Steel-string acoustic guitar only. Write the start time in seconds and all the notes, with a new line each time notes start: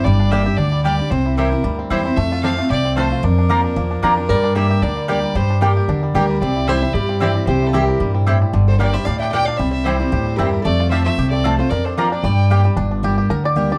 0.07 G2
0.31 G3 A#3 D4 G4
0.46 D4 G4
0.58 D3
0.85 G3 A#3 D4 G4
0.99 D4 G4
1.12 C3
1.37 E3 G3 C4 E4
1.52 C4 E4
1.64 G2
1.90 E3 G3 C4 E4
2.05 C4 E4
2.17 F2
2.43 F3 A3 C4 F4
2.59 C4 F4
2.71 C3
2.96 F3 A3 C4 F4
3.23 F2
3.50 F3 A#3 D4 F4
3.76 F3
4.03 F3 A#3 D4 F4
4.18 D4 F4
4.30 G2
4.56 G3 A#3 D4 G4
4.83 D3
5.09 G3 A#3 D4 G4
5.35 G2
5.61 G3 A#3 D4 G4
5.89 D3
6.16 G3 A#3 D4 G4
6.42 C3
6.68 E3 G3 C4 E4
6.82 C4 E4
6.95 G2
7.21 E3 G3 C4 E4
7.47 C3
7.73 E3 G3 C4 E4
8.00 A#2
8.27 A2
8.53 G2
8.79 G3 A#3 D4 G4
8.94 D4 G4
9.06 A2
9.33 A#2
9.59 C3
9.85 E3 G3 C4 E4
10.00 C4 E4
10.12 A2
10.39 G2
10.65 F2
10.91 F3 A3 C4 F4
11.06 C4 F4
11.19 C3
11.44 F3 A3 C4 F4
11.59 C4 F4
11.71 F2
11.97 F3 A#3 D4 F4
12.24 G2
12.50 G3 A#3 D4 G4
12.64 D4 G4
12.77 G2
13.03 G3 A#3 D4 G4
13.31 D3
13.55 G3 A#3 D4 G4
13.70 D4 G4